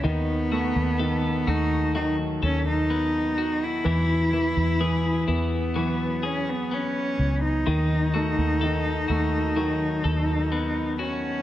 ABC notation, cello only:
X:1
M:4/4
L:1/16
Q:1/4=63
K:Bmix
V:1 name="Cello"
B,6 D2 D2 C D4 E- | E6 B,4 C B, C3 D- | D12- D2 C2 |]